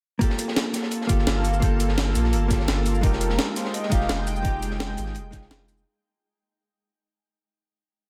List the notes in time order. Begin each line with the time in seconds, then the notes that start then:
0.19 A#3 F4 G4 A4, kick, closed hi-hat
0.24 A4
0.30 snare
0.39 closed hi-hat, shaker
0.48 snare
0.56 snare, closed hi-hat
0.74 snare, closed hi-hat, shaker
0.83 snare
0.91 closed hi-hat
1.01 snare
1.07 G1 A#3 F4 G4, kick, closed hi-hat, shaker
1.12 A4
1.19 snare
1.27 G1, snare, closed hi-hat
1.45 closed hi-hat, open hi-hat, shaker
1.54 shaker
1.60 G1 A#3 F4 G4, kick, closed hi-hat
1.65 A4
1.80 closed hi-hat, shaker
1.88 snare
1.98 snare, closed hi-hat
2.15 A#1, closed hi-hat, shaker
2.24 snare
2.33 G1, closed hi-hat
2.48 A#3 F4 G4, kick, snare, closed hi-hat, shaker
2.53 A4
2.60 snare
2.68 G1, snare, closed hi-hat
2.86 closed hi-hat, open hi-hat, shaker
2.95 shaker
3.01 F1 G#3 D#4 F4 A#4 G5, kick, closed hi-hat
3.06 G4
3.13 snare
3.21 closed hi-hat, shaker
3.30 snare
3.38 snare, closed hi-hat
3.56 C5, snare, closed hi-hat, shaker
3.65 snare
3.74 D#5, closed hi-hat
3.83 snare
3.90 F1 G#3 D#4 F4 F5, kick, closed hi-hat, shaker
3.94 G4
4.01 snare
4.09 F1, snare, closed hi-hat
4.27 G5, closed hi-hat, open hi-hat, shaker
4.36 shaker
4.42 F1 G#3 D#4 F4, kick, closed hi-hat
4.47 G4
4.63 closed hi-hat, shaker
4.71 snare
4.80 snare, closed hi-hat
4.97 G#1, closed hi-hat, shaker
5.06 snare
5.15 F1, closed hi-hat
5.31 G#3 D#4 F4, kick, snare, closed hi-hat, shaker
5.36 G#4
5.42 snare
5.51 F1, snare, closed hi-hat
5.68 closed hi-hat, open hi-hat, shaker
5.78 shaker